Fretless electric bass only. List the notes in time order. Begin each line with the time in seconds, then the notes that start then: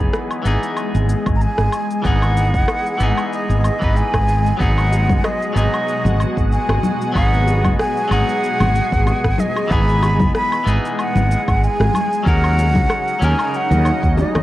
0.45 G#1
0.95 G#1
1.26 G#1
1.58 G#1
2.05 G#1
2.54 F#1
3.00 G#1
3.49 G#1
3.82 G#1
4.14 G#1
4.60 G#1
5.10 F#1
5.56 G#1
6.05 G#1
6.37 G#1
6.69 G#1
7.15 G#1
7.64 F#1
8.11 G#1
8.60 G#1
8.92 G#1
9.24 G#1
9.71 G#1
10.20 F#1
10.66 G#1
11.16 G#1
11.48 G#1
11.80 G#1
12.26 D#2
12.75 C#2
13.22 D#2
13.71 D#2
14.03 D#2
14.35 D#2